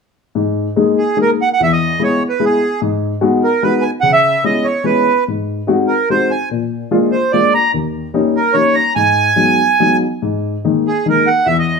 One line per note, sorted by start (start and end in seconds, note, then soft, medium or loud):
0.35 0.66 G#2 medium
0.76 0.98 G#3 medium
0.76 0.98 A#3 medium
0.76 0.98 D#4 medium
0.76 0.98 G#4 medium
0.98 1.18 G#4 medium
1.17 1.39 G#3 soft
1.17 1.39 A#3 soft
1.17 1.38 D#4 soft
1.17 1.39 G#4 medium
1.22 1.30 A#4 medium
1.42 1.49 F#5 medium
1.53 1.61 F#5 medium
1.60 1.91 E2 medium
1.60 1.72 E5 medium
1.72 2.02 D#5 medium
1.99 2.21 G#3 medium
1.99 2.21 B3 soft
1.99 2.21 E4 soft
1.99 2.21 G#4 medium
2.03 2.23 C#5 medium
2.29 2.45 B4 medium
2.40 2.61 G#3 soft
2.40 2.61 B3 soft
2.40 2.61 E4 soft
2.40 2.61 G#4 soft
2.45 2.81 G#4 medium
2.81 3.12 G#2 medium
3.21 3.43 G#3 medium
3.21 3.43 B3 medium
3.21 3.43 D#4 medium
3.21 3.42 F#4 medium
3.44 3.63 A#4 medium
3.63 3.84 G#3 medium
3.63 3.84 B3 medium
3.63 3.84 D#4 soft
3.63 3.83 F#4 soft
3.63 3.84 B4 medium
3.82 3.91 G#5 medium
4.01 4.34 C#3 medium
4.01 4.12 F#5 medium
4.12 4.44 E5 medium
4.44 4.66 G#3 soft
4.44 4.66 B3 soft
4.44 4.65 C#4 soft
4.44 4.66 E4 soft
4.44 4.67 D#5 medium
4.64 4.86 C#5 medium
4.84 5.06 G#3 soft
4.84 5.07 B3 soft
4.84 5.06 C#4 soft
4.84 5.07 E4 soft
4.84 5.24 B4 medium
5.28 5.59 G#2 soft
5.67 5.90 G#3 medium
5.67 5.90 C4 medium
5.67 5.89 D#4 soft
5.67 5.90 F#4 medium
5.87 6.09 A#4 medium
6.10 6.31 G#3 soft
6.10 6.31 C4 soft
6.10 6.31 D#4 soft
6.10 6.31 F#4 soft
6.10 6.32 C5 medium
6.31 6.49 G#5 medium
6.51 6.81 A#2 soft
6.91 7.12 G#3 medium
6.91 7.12 A#3 medium
6.91 7.12 D4 medium
6.91 7.12 F4 medium
7.12 7.32 C5 medium
7.32 7.54 G#3 medium
7.32 7.54 A#3 soft
7.32 7.53 D4 medium
7.32 7.54 F4 medium
7.32 7.53 D5 medium
7.54 7.72 A#5 medium
7.74 8.04 D#2 soft
8.14 8.35 G3 medium
8.14 8.35 A#3 medium
8.14 8.35 C#4 medium
8.14 8.35 D#4 medium
8.36 8.56 A#4 medium
8.53 8.76 G3 soft
8.53 8.76 A#3 soft
8.53 8.76 C#4 soft
8.53 8.75 D#4 medium
8.53 8.75 C#5 medium
8.75 8.94 A#5 medium
8.95 9.27 G#2 medium
8.95 9.97 G#5 medium
9.36 9.58 F#3 medium
9.36 9.58 G#3 soft
9.36 9.58 B3 soft
9.36 9.58 D#4 soft
9.80 10.02 F#3 soft
9.80 10.02 G#3 soft
9.80 10.02 B3 soft
9.80 10.02 D#4 medium
10.22 10.54 G#2 medium
10.65 10.86 D#3 medium
10.65 10.86 G#3 soft
10.65 10.86 A#3 soft
10.65 10.86 D#4 medium
10.87 11.07 G#4 medium
11.06 11.27 D#3 soft
11.06 11.27 G#3 soft
11.06 11.27 A#3 soft
11.06 11.27 D#4 medium
11.06 11.29 A#4 medium
11.27 11.47 F#5 medium
11.46 11.77 E2 medium
11.46 11.57 E5 medium
11.59 11.80 D#5 medium